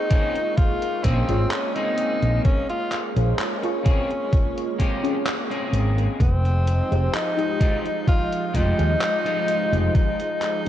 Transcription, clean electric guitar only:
0.10 0.35 A#3 loud
0.10 0.35 C4 loud
0.10 0.35 C#4 loud
0.10 0.35 G#4 loud
0.57 muted clean electric guitar stroke soft
1.04 1.40 A#3 loud
1.04 1.40 C4 loud
1.04 1.40 C#4 medium
1.04 1.40 G#4 loud
1.75 2.70 A#3 medium
1.75 2.70 C4 medium
1.75 2.70 C#4 medium
1.75 2.70 G#4 loud
3.62 muted clean electric guitar stroke medium
3.84 4.10 A#3 loud
3.84 4.10 C4 loud
3.84 4.10 C#4 loud
3.84 4.10 G#4 loud
4.32 muted clean electric guitar stroke soft
4.79 5.15 A#3 loud
4.79 5.15 C4 loud
4.79 5.15 C#4 loud
4.79 5.16 G4 loud
5.50 6.20 A#3 loud
5.50 6.20 C4 medium
5.50 6.20 C#4 medium
5.50 6.20 G#4 loud
7.37 muted clean electric guitar stroke medium
7.60 7.85 G#3 loud
7.60 7.85 D#4 loud
7.60 7.86 F4 loud
7.60 7.86 G4 loud
8.07 muted clean electric guitar stroke soft
8.54 8.90 G#3 loud
8.54 8.90 D#4 medium
8.54 8.90 F4 loud
8.54 8.90 G4 loud
9.25 10.19 G#3 medium
9.25 10.20 D#4 medium
9.25 10.20 F4 medium
9.25 10.20 G4 loud

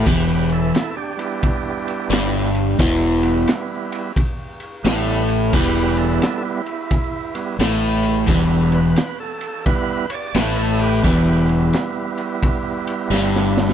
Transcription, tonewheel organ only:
0.00 0.26 G4 medium
0.00 0.06 A#4 medium
0.05 0.27 B4 medium
0.28 0.49 G4 medium
0.28 0.50 B4 medium
0.52 0.73 E4 medium
0.52 0.73 A4 medium
0.74 0.95 E4 medium
0.74 0.96 A4 medium
0.97 2.29 D4 medium
0.97 2.29 G4 loud
1.17 2.10 G3 soft
1.17 2.11 B3 medium
1.17 2.12 E4 medium
2.11 2.51 G3 soft
2.11 2.51 B3 soft
2.11 2.51 E4 medium
3.22 4.12 G3 medium
3.22 4.12 B3 soft
3.22 4.13 E4 medium
4.83 5.24 G3 soft
4.83 5.24 B3 soft
4.83 5.24 E4 medium
5.50 6.62 G3 medium
5.50 6.62 B3 medium
5.50 5.96 E4 medium
5.50 5.74 G4 medium
5.50 5.55 A#4 medium
5.55 5.74 B4 medium
5.75 5.97 G4 medium
5.75 5.98 B4 medium
5.97 6.19 E4 medium
5.97 6.19 A4 medium
6.20 6.43 E4 medium
6.20 6.43 A4 medium
6.45 7.34 E4 medium
7.35 7.58 G3 soft
7.35 7.57 B3 soft
7.35 7.58 E4 medium
8.29 8.80 G3 medium
8.29 8.80 B3 medium
8.29 8.80 E4 medium
8.75 9.19 B4 medium
9.20 9.65 A4 medium
9.65 10.06 G3 soft
9.65 10.06 B3 soft
9.65 10.06 E4 medium
9.65 10.11 B4 medium
10.10 10.15 C#5 medium
10.14 10.36 D5 medium
10.35 10.58 B4 medium
10.59 10.81 A4 medium
10.81 11.46 G4 medium
10.81 11.48 B4 loud
11.04 13.73 G3 medium
11.04 13.73 B3 soft
11.04 13.73 E4 medium

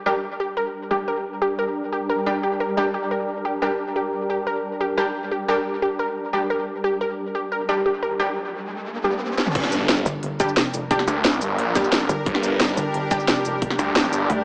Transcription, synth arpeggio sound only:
0.06 0.22 A#4 medium
0.40 0.52 G4 medium
0.57 0.73 A#4 medium
0.91 1.03 G4 medium
1.08 1.24 A#4 medium
1.42 1.53 G4 medium
1.59 1.75 A#4 medium
1.92 2.04 G4 medium
2.09 2.25 A#4 medium
2.43 2.55 G4 medium
2.60 2.76 A#4 medium
2.94 3.06 G4 medium
3.11 3.27 A#4 medium
3.45 3.57 G4 medium
3.62 3.78 A#4 medium
3.96 4.08 G4 medium
4.30 4.41 G4 medium
4.47 4.63 A#4 medium
4.81 4.92 G4 medium
4.97 5.14 A#4 medium
5.31 5.43 G4 medium
5.48 5.64 A#4 medium
5.82 5.94 G4 medium
5.99 6.15 A#4 medium
6.33 6.45 G4 medium
6.50 6.66 A#4 medium
6.84 6.96 G4 medium
7.01 7.17 A#4 medium
7.35 7.47 G4 medium
7.52 7.68 A#4 medium
7.86 7.97 G4 medium
8.03 8.19 A#4 medium

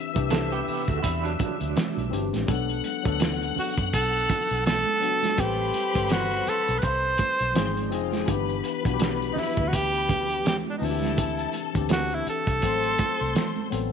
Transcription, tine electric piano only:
0.00 0.13 E3 medium
0.00 2.11 C4 medium
0.00 0.16 D4 medium
0.00 0.17 G4 loud
0.13 1.28 C3 medium
0.13 1.27 E3 medium
0.13 1.29 D4 medium
0.13 1.29 G4 medium
2.09 2.40 E3 medium
2.09 2.41 C4 medium
2.09 2.42 D4 medium
2.09 2.42 G4 medium
2.46 2.91 F#3 medium
2.46 2.92 B3 medium
2.46 2.92 D4 medium
2.50 2.93 A4 loud
3.03 4.17 F#3 medium
3.03 4.18 B3 medium
3.03 4.19 D4 medium
3.07 4.19 A4 medium
5.00 5.31 F#3 medium
5.00 5.31 B3 medium
5.00 5.32 D4 medium
5.00 5.33 F#4 medium
5.36 5.81 G3 medium
5.36 5.82 C4 medium
5.36 5.83 A4 medium
5.36 5.81 B4 medium
5.94 7.08 G3 medium
5.94 7.09 C4 medium
5.94 7.09 A4 medium
5.94 7.08 B4 medium
7.54 7.85 F3 medium
7.54 7.86 C4 medium
7.54 7.86 D#4 medium
7.58 7.87 G#4 medium
7.90 8.21 F3 medium
7.90 8.21 C4 medium
7.90 8.22 D#4 medium
7.90 8.23 G#4 medium
8.26 8.71 E3 loud
8.26 8.72 B3 medium
8.26 8.72 D4 medium
8.26 8.73 G4 loud
8.83 9.97 E3 medium
8.83 9.98 B3 medium
8.83 9.98 D4 medium
8.87 8.92 F#4 medium
8.94 10.02 G4 medium
10.79 11.53 E3 medium
10.79 11.54 C4 medium
10.79 11.54 D4 medium
10.84 10.90 F#4 medium
10.90 11.58 G4 medium
11.73 12.62 E3 medium
11.73 12.63 C4 medium
11.73 12.63 D4 medium
11.73 12.64 G4 medium
12.61 13.51 F#3 medium
12.61 13.52 A3 medium
12.61 13.53 C4 medium
12.65 13.53 A4 medium
13.70 13.92 F#3 medium
13.70 13.92 B3 medium
13.70 13.92 C4 medium
13.70 13.92 A4 medium

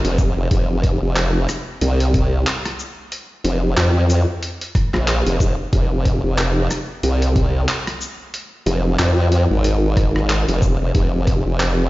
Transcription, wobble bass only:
0.04 0.34 F1 loud
0.37 0.49 F1 loud
0.51 1.00 F1 loud
1.02 1.47 F1 loud
1.81 2.44 C2 loud
3.44 3.75 F1 loud
3.77 4.25 F2 loud
4.94 5.23 A#1 loud
5.26 5.56 F1 loud
5.73 6.21 F1 loud
6.24 6.68 F1 loud
7.03 7.66 C2 loud
8.66 8.97 F1 loud
8.99 9.47 F2 loud
9.50 10.45 G#1 loud
10.48 10.78 F1 loud
10.81 10.92 F1 loud
10.95 11.43 F1 loud
11.46 11.89 F1 loud

